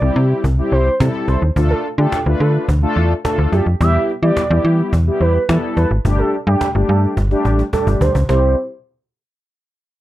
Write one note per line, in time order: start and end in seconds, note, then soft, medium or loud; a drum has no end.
0.00 0.11 C2 medium
0.00 0.43 G3 medium
0.00 0.43 C4 medium
0.00 0.43 E4 medium
0.00 0.43 G4 medium
0.00 0.14 D5 medium
0.00 cajon slap soft
0.16 0.34 C3 loud
0.16 cajon slap soft
0.30 cajon slap soft
0.44 0.62 C2 loud
0.44 cajon bass loud
0.58 0.89 G3 medium
0.58 0.89 C4 medium
0.58 0.89 E4 medium
0.58 0.89 G4 medium
0.58 cajon slap soft
0.72 0.90 C2 medium
0.72 0.95 C5 medium
0.72 cajon slap soft
0.86 cajon slap soft
1.00 1.09 C3 loud
1.00 1.41 G3 medium
1.00 1.41 C4 medium
1.00 1.41 E4 medium
1.00 1.41 A4 medium
1.00 cajon bass loud
1.00 cajon slap loud
1.14 cajon slap soft
1.28 1.37 C2 medium
1.28 1.40 C5 medium
1.28 cajon slap medium
1.42 1.51 D#2 medium
1.42 cajon slap soft
1.56 1.74 D2 loud
1.56 1.87 A3 medium
1.56 1.87 D4 medium
1.56 1.87 F4 medium
1.56 1.87 A4 medium
1.56 cajon bass loud
1.70 1.82 A4 medium
1.84 cajon slap soft
1.98 2.07 D3 loud
1.98 2.19 A3 medium
1.98 2.19 D4 medium
1.98 2.19 F4 medium
1.98 2.21 G4 medium
1.98 2.19 A4 medium
1.98 cajon slap soft
2.12 cajon bass loud
2.12 cajon slap loud
2.26 2.35 D2 medium
2.26 2.67 A3 medium
2.26 2.67 D4 medium
2.26 2.67 F4 medium
2.26 2.67 B4 medium
2.26 cajon slap soft
2.40 2.58 D3 medium
2.40 2.52 A4 medium
2.40 cajon slap soft
2.55 cajon slap soft
2.68 2.86 D2 loud
2.68 cajon bass loud
2.82 3.13 A3 loud
2.82 3.13 D4 medium
2.82 3.13 F4 medium
2.82 3.13 A4 loud
2.82 cajon slap soft
2.96 3.14 E2 medium
2.96 cajon slap soft
3.11 cajon slap soft
3.24 3.65 A3 medium
3.24 3.65 D4 medium
3.24 3.66 F4 medium
3.24 3.36 A4 medium
3.24 3.66 A4 medium
3.24 cajon bass loud
3.24 cajon slap loud
3.38 3.47 D2 medium
3.38 cajon slap soft
3.52 3.61 F#2 medium
3.52 3.64 G4 medium
3.52 cajon slap medium
3.66 3.75 F2 medium
3.66 cajon slap soft
3.80 3.98 E2 loud
3.80 4.11 G3 medium
3.80 4.11 B3 medium
3.80 4.11 E4 medium
3.80 4.11 G4 medium
3.80 4.03 E5 loud
3.80 cajon bass loud
3.94 cajon slap soft
4.09 cajon slap soft
4.22 4.31 E3 medium
4.22 4.43 G3 medium
4.22 4.43 B3 medium
4.22 4.43 E4 medium
4.22 4.43 G4 medium
4.22 4.62 D5 medium
4.22 cajon slap soft
4.37 cajon bass loud
4.37 cajon slap loud
4.50 4.59 E2 loud
4.50 4.92 G3 medium
4.50 4.92 B3 medium
4.50 4.92 E4 medium
4.50 4.92 G4 medium
4.50 cajon slap soft
4.65 4.82 E3 loud
4.65 cajon slap soft
4.79 cajon slap soft
4.93 5.10 E2 medium
4.93 cajon bass loud
5.07 5.37 G3 medium
5.07 5.38 B3 medium
5.07 5.38 E4 medium
5.07 5.38 G4 medium
5.07 cajon slap soft
5.21 5.38 E2 medium
5.21 5.43 B4 medium
5.21 cajon slap soft
5.35 cajon slap soft
5.49 5.58 E3 loud
5.49 5.90 G3 medium
5.49 5.90 B3 medium
5.49 5.90 E4 medium
5.49 5.90 A4 medium
5.49 cajon bass loud
5.49 cajon slap loud
5.63 cajon slap soft
5.77 5.86 E2 medium
5.77 5.88 B4 medium
5.77 cajon slap medium
5.91 6.00 G#1 loud
5.91 cajon slap soft
6.05 6.23 G1 loud
6.05 6.36 G3 medium
6.05 6.36 A3 medium
6.05 6.36 D4 medium
6.05 6.36 G4 medium
6.05 cajon bass loud
6.19 6.30 A4 medium
6.19 cajon slap soft
6.33 cajon slap soft
6.47 6.56 G2 loud
6.47 6.67 G3 medium
6.47 6.67 A3 medium
6.47 6.67 D4 medium
6.47 6.69 G4 medium
6.47 6.68 G4 medium
6.47 cajon slap soft
6.61 cajon bass loud
6.61 cajon slap loud
6.75 6.84 G1 loud
6.75 7.16 G3 medium
6.75 7.16 A3 medium
6.75 7.16 D4 medium
6.75 7.16 G4 medium
6.75 cajon slap soft
6.89 7.07 G2 loud
6.89 7.00 A4 medium
6.89 cajon slap soft
7.03 cajon slap soft
7.17 7.35 G1 medium
7.17 cajon bass loud
7.17 cajon slap medium
7.31 7.62 G3 medium
7.31 7.62 A3 medium
7.31 7.62 D4 medium
7.31 7.62 G4 loud
7.31 cajon slap medium
7.45 7.63 A1 medium
7.45 cajon slap medium
7.59 cajon slap medium
7.73 8.14 G3 medium
7.73 8.14 A3 medium
7.73 8.14 D4 medium
7.73 8.14 G4 medium
7.73 7.84 A4 medium
7.73 cajon bass medium
7.73 cajon bass loud
7.87 7.96 G1 loud
7.87 cajon bass medium
8.01 8.10 D2 medium
8.01 8.12 C5 medium
8.01 cajon bass loud
8.15 8.24 C#2 medium
8.15 cajon bass loud
8.29 8.55 C2 loud
8.29 8.55 G3 medium
8.29 8.55 C4 medium
8.29 8.55 E4 medium
8.29 8.55 G4 loud
8.29 8.55 C5 medium
8.29 cajon slap loud